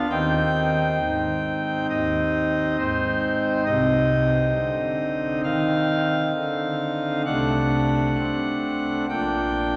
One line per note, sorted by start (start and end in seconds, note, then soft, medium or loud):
0.10 0.99 D#2 medium
0.10 0.99 D#3 medium
0.10 3.63 C4 medium
0.10 3.63 D#4 soft
0.10 1.86 G5 loud
1.01 1.88 G#2 medium
1.90 2.77 D#2 medium
1.90 2.77 D#5 loud
2.79 3.64 G#2 medium
2.79 3.64 C5 loud
3.66 4.52 C2 medium
3.66 4.52 C3 medium
3.66 7.22 C4 medium
3.66 7.22 D#4 medium
3.66 5.40 D#5 loud
4.55 5.42 D3 medium
5.44 6.32 D#3 medium
5.44 7.22 F5 loud
6.36 7.24 D3 medium
7.26 8.15 C2 medium
7.26 8.15 C3 medium
7.26 9.06 A3 medium
7.26 9.06 D4 medium
7.26 9.06 F#5 loud
8.18 9.07 C4 medium
9.09 9.77 A#1 medium
9.09 9.77 A#2 medium
9.09 9.77 A#3 soft
9.09 9.77 D4 soft
9.09 9.77 G5 loud